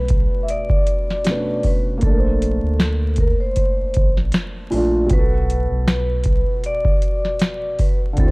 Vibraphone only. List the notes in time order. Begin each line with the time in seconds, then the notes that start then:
Already playing: B4
0.43 E5
0.50 D5
1.67 B4
2.04 A4
3.20 A#4
3.40 C5
5.13 B4
5.90 B4
6.66 D5
7.81 B4
8.20 A4